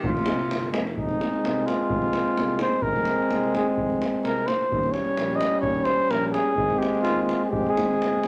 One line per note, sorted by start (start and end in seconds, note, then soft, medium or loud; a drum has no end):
0.00 0.11 D#3 medium
0.00 davul low medium
0.04 0.30 F1 medium
0.04 0.75 F4 medium
0.09 0.77 C3 medium
0.17 davul high soft
0.26 0.36 G#3 medium
0.26 davul high medium
0.30 0.39 C4 medium
0.39 davul high soft
0.51 0.73 G1 medium
0.51 davul high medium
0.63 davul high soft
0.72 0.96 F1 medium
0.72 0.82 G#3 medium
0.72 davul high medium
0.76 0.85 C4 medium
0.87 davul high soft
0.96 1.23 F1 medium
0.96 2.79 G#3 medium
0.96 1.68 D#4 medium
0.96 davul low medium
1.01 2.82 C4 medium
1.09 davul high soft
1.21 davul high medium
1.34 davul high soft
1.44 1.69 C2 medium
1.44 davul high medium
1.56 davul high soft
1.67 2.60 F4 medium
1.67 davul high medium
1.90 2.17 F1 medium
1.90 davul low medium
2.02 davul high soft
2.13 davul high medium
2.25 davul high soft
2.37 2.63 C2 medium
2.37 davul high medium
2.48 davul high soft
2.59 2.84 C5 medium
2.59 davul high medium
2.82 3.10 F1 medium
2.82 4.48 G#3 medium
2.82 4.49 C4 medium
2.82 3.53 A#4 loud
2.82 davul low medium
2.96 davul high soft
3.05 davul high medium
3.20 davul high soft
3.31 3.56 C2 medium
3.31 davul high medium
3.44 davul high soft
3.55 3.66 G#4 medium
3.55 davul high medium
3.77 4.03 F1 medium
3.77 davul low medium
3.90 davul high soft
4.02 davul high medium
4.11 davul high soft
4.24 4.50 C2 medium
4.24 4.48 A#4 medium
4.24 davul high medium
4.37 davul high soft
4.47 4.94 C5 medium
4.47 davul high medium
4.61 davul high soft
4.69 4.95 D#2 medium
4.69 6.55 G3 medium
4.69 6.53 C#4 medium
4.69 davul low medium
4.83 davul high soft
4.92 5.38 C#5 medium
4.92 davul high soft
5.05 davul high soft
5.17 5.43 A#1 medium
5.17 davul high medium
5.31 davul high soft
5.36 5.60 D#5 medium
5.41 davul high medium
5.61 5.90 D#2 medium
5.61 5.86 C#5 medium
5.61 davul low medium
5.75 davul high soft
5.85 6.13 C5 medium
5.85 davul high medium
6.00 davul high soft
6.09 6.35 A#1 medium
6.09 6.28 A#4 medium
6.09 davul high medium
6.22 davul high soft
6.28 6.34 A#4 medium
6.32 6.80 G#4 loud
6.32 davul high medium
6.55 6.81 G#1 loud
6.55 7.47 G#3 medium
6.55 7.48 C4 medium
6.55 davul low medium
6.70 davul high soft
6.79 7.01 G4 medium
6.79 davul high medium
6.95 davul high soft
7.02 7.28 D#2 medium
7.02 7.22 F4 medium
7.02 davul high medium
7.16 davul high soft
7.22 7.41 F4 medium
7.29 davul high medium
7.45 7.51 G#4 medium
7.49 7.63 F1 medium
7.49 8.24 G#3 medium
7.49 8.25 C4 medium
7.49 7.71 G4 medium
7.49 davul low medium
7.67 8.28 G#4 medium
7.67 davul high soft
7.75 7.96 G#1 medium
7.75 davul high medium
7.91 davul high soft
7.98 8.20 G1 medium
7.98 davul high medium
8.21 8.28 F1 medium
8.21 davul high medium